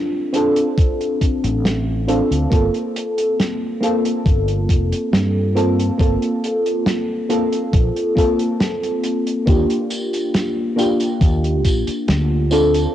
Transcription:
Already playing: fm electric piano C4 D4 F4 A4
0.33 fm electric piano C4 D4 F4 A4, closed hi-hat
0.56 closed hi-hat
0.78 kick, closed hi-hat
1.01 closed hi-hat
1.21 kick, closed hi-hat
1.44 fretless electric bass A1, closed hi-hat
1.65 snare, closed hi-hat
2.08 fm electric piano C4 D4 F4 A4, closed hi-hat
2.31 fretless electric bass D2, closed hi-hat
2.50 fretless electric bass G1, fm electric piano A#3 C4 F4 A4, kick, closed hi-hat
2.74 closed hi-hat
2.96 closed hi-hat
3.18 closed hi-hat
3.40 snare, closed hi-hat
3.81 fm electric piano A#3 C4 F4 A4, closed hi-hat
4.05 closed hi-hat
4.26 fretless electric bass G1, kick, closed hi-hat
4.48 closed hi-hat
4.69 fretless electric bass F1, kick, closed hi-hat
4.92 muted fretless electric bass stroke, closed hi-hat
5.13 fretless electric bass G2, snare, closed hi-hat
5.55 fm electric piano A#3 C4 F4 A4, closed hi-hat
5.80 closed hi-hat
5.98 fretless electric bass G1, fm electric piano A#3 C4 F4 A4, kick, closed hi-hat
6.22 closed hi-hat
6.44 closed hi-hat
6.66 closed hi-hat
6.86 snare, closed hi-hat
7.29 fm electric piano A#3 C4 F4 A4, closed hi-hat
7.53 closed hi-hat
7.73 fretless electric bass A#1, kick, closed hi-hat
7.96 closed hi-hat
8.15 fm electric piano A#3 C4 F4 A4, kick, closed hi-hat
8.39 closed hi-hat
8.60 snare, closed hi-hat
8.83 closed hi-hat
9.04 closed hi-hat
9.27 closed hi-hat
9.46 fretless electric bass D#2, fm electric piano A#3 D4 F4 G4, kick, closed hi-hat, tambourine
9.70 closed hi-hat
9.90 closed hi-hat, tambourine
10.13 closed hi-hat, tambourine
10.34 snare, closed hi-hat, tambourine
10.76 fm electric piano A#3 D4 F4 G4, closed hi-hat, tambourine
11.00 closed hi-hat, tambourine
11.21 fretless electric bass D#2, kick, closed hi-hat, tambourine
11.44 closed hi-hat
11.65 fretless electric bass A#1, kick, closed hi-hat, tambourine
11.87 muted fretless electric bass stroke, closed hi-hat, tambourine
12.08 fretless electric bass D2, snare, closed hi-hat, tambourine
12.51 fm electric piano C4 D4 F4 A4, closed hi-hat, tambourine
12.74 closed hi-hat, tambourine

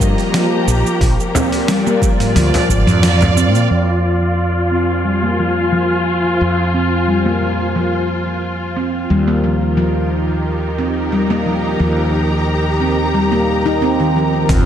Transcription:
Already playing: string section D#3 A#3 G4 D#5 A#5
0.00 fretless electric bass G2, handpan F3, kick, cabasa
0.18 open hi-hat, cabasa
0.34 handpan F3, snare, open hi-hat, cabasa
0.67 fretless electric bass A#1, cabasa
0.86 cabasa
1.01 fretless electric bass A#1, string section A#2, kick, open hi-hat, cabasa
1.20 cabasa
1.35 handpan C4, frame drum, cabasa
1.52 open hi-hat, cabasa
1.68 handpan G3, string section D5, snare, open hi-hat, cabasa
1.86 handpan A#3, cabasa
2.02 handpan F3, kick, cabasa
2.12 string section F4
2.20 string section F5, mid tom, open hi-hat, cabasa
2.36 fretless electric bass D2, handpan F3, open hi-hat, cabasa
2.54 open hi-hat, frame drum, cabasa
2.69 fretless electric bass G#1, kick, cabasa
2.87 fretless electric bass F2, mid tom, open hi-hat, cabasa
3.03 snare, open hi-hat, cabasa
3.21 mid tom, open hi-hat, frame drum, cabasa
3.37 handpan C4, cabasa
3.54 fretless electric bass A#2, cabasa
3.71 fretless electric bass F2, handpan F3
4.57 string section G#5
4.65 string section C5
4.71 handpan C4
5.05 handpan G3
5.23 handpan A#3
5.39 handpan F3
5.72 handpan F3
6.41 fretless electric bass F2
6.74 handpan C4
7.08 handpan G3
7.26 handpan A#3
7.42 handpan F3
7.76 handpan F3
8.76 handpan C4
9.09 fretless electric bass D#2, string section D#3, handpan G3
9.28 handpan A#3
9.44 handpan F3
9.56 string section D#4
9.68 string section A#4
9.77 handpan F3
9.89 string section G4
10.78 handpan C4
11.01 string section A#5
11.12 handpan G3
11.30 handpan A#3
11.46 handpan F3
11.80 fretless electric bass D#2, handpan F3
12.80 handpan C4
13.14 handpan G3
13.32 handpan A#3
13.66 handpan D#4
13.82 handpan C4
14.00 handpan D#3
14.16 handpan F3
14.49 fretless electric bass F2, handpan F3, string section F4, kick, mid tom, open hi-hat, impact, cabasa

